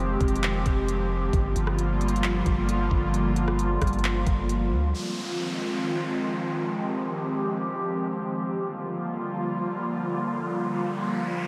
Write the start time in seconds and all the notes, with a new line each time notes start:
Already playing: F1 D#3 F3 G#3 C4 G4
0.21 F1, kick, closed hi-hat
0.28 closed hi-hat
0.36 closed hi-hat
0.43 clap, closed hi-hat
0.66 F1, kick, closed hi-hat
0.88 closed hi-hat
1.33 G1 D3 F3 G3 A#3 F4, kick, closed hi-hat
1.56 G1, closed hi-hat
1.67 cross-stick
1.79 closed hi-hat
2.01 closed hi-hat
2.08 closed hi-hat
2.16 closed hi-hat
2.23 clap, closed hi-hat
2.46 G1, kick, closed hi-hat
2.69 closed hi-hat
2.91 G1, kick
3.14 closed hi-hat
3.36 closed hi-hat
3.48 cross-stick
3.59 closed hi-hat
3.82 G1, kick, cross-stick, closed hi-hat
3.87 closed hi-hat
3.93 closed hi-hat
3.99 closed hi-hat
4.04 clap, closed hi-hat
4.27 G1, kick, closed hi-hat
4.49 closed hi-hat
4.71 D2
4.94 D#3 F3 G#3 C4 F4, downlifter
6.74 G4
8.55 D3 G3 A#3 F4, riser